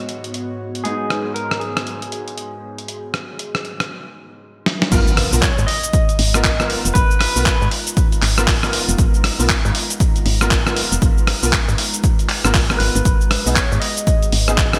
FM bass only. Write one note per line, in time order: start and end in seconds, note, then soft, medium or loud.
4.92 5.24 G#1 loud
5.33 5.47 B1 medium
5.58 5.65 G#2 medium
6.19 6.76 G#1 loud
6.85 6.92 F1 medium
6.95 7.27 G#1 loud
7.36 7.51 B1 medium
7.61 7.68 G#2 loud
8.22 8.80 G#1 loud
8.89 8.95 F1 loud
8.99 9.31 G#1 loud
9.39 9.54 B1 medium
9.65 9.71 G#2 medium
10.26 10.83 G#1 loud
10.92 10.98 F1 medium
11.02 11.34 G#1 loud
11.43 11.57 B1 medium
11.68 11.75 G#2 medium
12.45 12.74 G#1 loud
12.80 12.90 G#1 medium
12.95 13.02 G#1 loud
13.05 13.38 G#1 loud
13.46 13.61 B1 medium
13.72 13.78 G#2 loud
14.32 14.79 G#1 loud